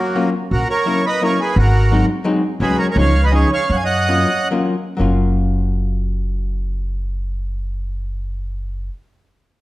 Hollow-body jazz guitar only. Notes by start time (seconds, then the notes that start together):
0.15 F#3 A#3 C#4 F4
0.86 F#3 A#3 C#4 E4
1.21 F#3 A#3 C#4 E4
1.91 F#3 G#3 C4 D#4
2.24 F#3 G#3 C4 D#4
2.61 F#3 G#3 C#4 F#4
2.96 F3 G#3 C#4 D#4
3.31 F3 G#3 C#4 D#4
4.08 F#3 A#3 C#4 F4
4.51 F#3 A#3 C#4 F4
4.97 F#3 A#3 C#4
5.01 F4